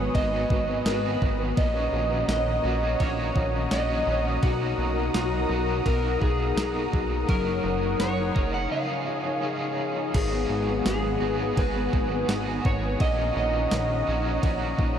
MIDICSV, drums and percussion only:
0, 0, Header, 1, 2, 480
1, 0, Start_track
1, 0, Key_signature, 6, "major"
1, 0, Tempo, 714286
1, 1058, Time_signature, 4, 2, 24, 8
1, 10072, End_track
2, 0, Start_track
2, 0, Title_t, "Drums"
2, 99, Note_on_c, 9, 36, 89
2, 101, Note_on_c, 9, 51, 57
2, 166, Note_off_c, 9, 36, 0
2, 168, Note_off_c, 9, 51, 0
2, 338, Note_on_c, 9, 36, 94
2, 405, Note_off_c, 9, 36, 0
2, 576, Note_on_c, 9, 54, 67
2, 577, Note_on_c, 9, 38, 127
2, 581, Note_on_c, 9, 51, 61
2, 644, Note_off_c, 9, 54, 0
2, 645, Note_off_c, 9, 38, 0
2, 648, Note_off_c, 9, 51, 0
2, 820, Note_on_c, 9, 36, 92
2, 887, Note_off_c, 9, 36, 0
2, 1058, Note_on_c, 9, 36, 125
2, 1058, Note_on_c, 9, 51, 55
2, 1125, Note_off_c, 9, 36, 0
2, 1125, Note_off_c, 9, 51, 0
2, 1537, Note_on_c, 9, 38, 106
2, 1537, Note_on_c, 9, 54, 69
2, 1538, Note_on_c, 9, 51, 58
2, 1604, Note_off_c, 9, 54, 0
2, 1605, Note_off_c, 9, 38, 0
2, 1606, Note_off_c, 9, 51, 0
2, 2016, Note_on_c, 9, 51, 54
2, 2017, Note_on_c, 9, 36, 91
2, 2084, Note_off_c, 9, 36, 0
2, 2084, Note_off_c, 9, 51, 0
2, 2256, Note_on_c, 9, 36, 90
2, 2323, Note_off_c, 9, 36, 0
2, 2494, Note_on_c, 9, 54, 68
2, 2495, Note_on_c, 9, 38, 117
2, 2499, Note_on_c, 9, 51, 61
2, 2561, Note_off_c, 9, 54, 0
2, 2562, Note_off_c, 9, 38, 0
2, 2566, Note_off_c, 9, 51, 0
2, 2975, Note_on_c, 9, 51, 59
2, 2977, Note_on_c, 9, 36, 125
2, 3042, Note_off_c, 9, 51, 0
2, 3044, Note_off_c, 9, 36, 0
2, 3456, Note_on_c, 9, 54, 72
2, 3457, Note_on_c, 9, 38, 114
2, 3458, Note_on_c, 9, 51, 61
2, 3523, Note_off_c, 9, 54, 0
2, 3524, Note_off_c, 9, 38, 0
2, 3525, Note_off_c, 9, 51, 0
2, 3936, Note_on_c, 9, 36, 90
2, 3938, Note_on_c, 9, 51, 60
2, 4004, Note_off_c, 9, 36, 0
2, 4005, Note_off_c, 9, 51, 0
2, 4177, Note_on_c, 9, 36, 88
2, 4244, Note_off_c, 9, 36, 0
2, 4418, Note_on_c, 9, 38, 123
2, 4418, Note_on_c, 9, 54, 72
2, 4422, Note_on_c, 9, 51, 57
2, 4485, Note_off_c, 9, 54, 0
2, 4486, Note_off_c, 9, 38, 0
2, 4489, Note_off_c, 9, 51, 0
2, 4660, Note_on_c, 9, 36, 90
2, 4727, Note_off_c, 9, 36, 0
2, 4897, Note_on_c, 9, 36, 120
2, 4897, Note_on_c, 9, 51, 59
2, 4964, Note_off_c, 9, 36, 0
2, 4964, Note_off_c, 9, 51, 0
2, 5374, Note_on_c, 9, 54, 67
2, 5375, Note_on_c, 9, 38, 110
2, 5376, Note_on_c, 9, 51, 52
2, 5441, Note_off_c, 9, 54, 0
2, 5442, Note_off_c, 9, 38, 0
2, 5443, Note_off_c, 9, 51, 0
2, 5617, Note_on_c, 9, 36, 91
2, 5684, Note_off_c, 9, 36, 0
2, 6816, Note_on_c, 9, 51, 68
2, 6817, Note_on_c, 9, 36, 113
2, 6817, Note_on_c, 9, 49, 95
2, 6883, Note_off_c, 9, 51, 0
2, 6884, Note_off_c, 9, 36, 0
2, 6884, Note_off_c, 9, 49, 0
2, 7295, Note_on_c, 9, 54, 68
2, 7296, Note_on_c, 9, 38, 108
2, 7297, Note_on_c, 9, 51, 59
2, 7362, Note_off_c, 9, 54, 0
2, 7363, Note_off_c, 9, 38, 0
2, 7364, Note_off_c, 9, 51, 0
2, 7777, Note_on_c, 9, 36, 91
2, 7778, Note_on_c, 9, 51, 60
2, 7845, Note_off_c, 9, 36, 0
2, 7845, Note_off_c, 9, 51, 0
2, 8018, Note_on_c, 9, 36, 94
2, 8085, Note_off_c, 9, 36, 0
2, 8257, Note_on_c, 9, 54, 70
2, 8258, Note_on_c, 9, 38, 119
2, 8262, Note_on_c, 9, 51, 60
2, 8324, Note_off_c, 9, 54, 0
2, 8325, Note_off_c, 9, 38, 0
2, 8329, Note_off_c, 9, 51, 0
2, 8501, Note_on_c, 9, 36, 101
2, 8568, Note_off_c, 9, 36, 0
2, 8737, Note_on_c, 9, 51, 63
2, 8738, Note_on_c, 9, 36, 118
2, 8804, Note_off_c, 9, 51, 0
2, 8805, Note_off_c, 9, 36, 0
2, 9216, Note_on_c, 9, 38, 123
2, 9216, Note_on_c, 9, 54, 71
2, 9217, Note_on_c, 9, 51, 56
2, 9283, Note_off_c, 9, 54, 0
2, 9284, Note_off_c, 9, 38, 0
2, 9284, Note_off_c, 9, 51, 0
2, 9697, Note_on_c, 9, 36, 102
2, 9699, Note_on_c, 9, 51, 59
2, 9764, Note_off_c, 9, 36, 0
2, 9766, Note_off_c, 9, 51, 0
2, 9936, Note_on_c, 9, 36, 85
2, 10003, Note_off_c, 9, 36, 0
2, 10072, End_track
0, 0, End_of_file